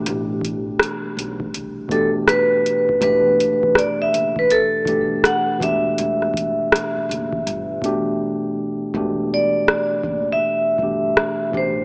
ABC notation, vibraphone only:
X:1
M:4/4
L:1/16
Q:"Swing 16ths" 1/4=81
K:Em
V:1 name="Vibraphone"
z8 z2 A2 B4 | B4 d e2 B A4 f2 e2- | e12 z4 | z2 d4- d e6- e c2 |]